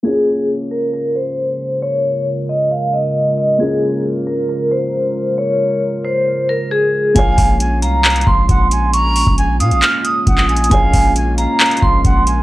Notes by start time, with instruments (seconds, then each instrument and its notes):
0.03 analog synth pad C#3 G#3 F4 A#4, felt piano A#3 C#4 F4 G#4, vibraphone G#4
0.71 vibraphone A#4
0.93 vibraphone A#4
1.16 vibraphone C5
1.82 vibraphone C#5
2.49 vibraphone D#5
2.71 vibraphone F5
2.93 vibraphone D#5
3.38 vibraphone D#5
3.58 felt piano A#3 C#4 F4 G#4, vibraphone G#4
4.27 vibraphone A#4
4.49 vibraphone A#4
4.71 vibraphone C5
5.38 vibraphone C#5
6.05 vibraphone C5
6.49 vibraphone A#4
6.71 vibraphone G#4
7.14 808-style bass A#1, analog synth pad G#3 A#3 C#4 F4, felt piano A#3 F4 G#4 C#5, flute F5, vibraphone G#5, kick, closed hi-hat
7.38 808-style bass A#1, kick, open hi-hat
7.60 flute G#5, closed hi-hat
7.82 808-style bass C2, flute F5, vibraphone A#5, closed hi-hat
8.05 vibraphone A#5, clap, closed hi-hat
8.10 closed hi-hat
8.16 closed hi-hat
8.21 closed hi-hat
8.27 808-style bass A#1, vibraphone C6, kick
8.49 808-style bass A#1, flute F#5, kick, closed hi-hat
8.71 flute G#5, closed hi-hat
8.93 flute A#5, vibraphone C#6, closed hi-hat
9.16 open hi-hat
9.27 808-style bass A#1, kick
9.38 flute G#5, closed hi-hat
9.60 808-style bass A#2, flute F5, vibraphone D#6, closed hi-hat
9.71 808-style bass A#1, closed hi-hat
9.82 vibraphone F6, clap, closed hi-hat
10.05 vibraphone D#6, closed hi-hat
10.27 808-style bass A#1, flute F#5, kick, closed hi-hat
10.38 clap
10.49 flute G#5, vibraphone D#6, closed hi-hat
10.56 closed hi-hat
10.64 closed hi-hat
10.69 808-style bass A#1, felt piano A#3 F4 G#4 C#5, flute F5, vibraphone G#5, kick, closed hi-hat
10.94 808-style bass A#1, kick, open hi-hat
11.16 flute G#5, closed hi-hat
11.38 flute F5, vibraphone A#5, closed hi-hat
11.60 vibraphone A#5, clap, closed hi-hat
11.66 closed hi-hat
11.71 closed hi-hat
11.77 closed hi-hat
11.82 808-style bass A#1, vibraphone C6, kick
12.05 808-style bass A#1, flute F#5, kick, closed hi-hat
12.27 flute G#5, closed hi-hat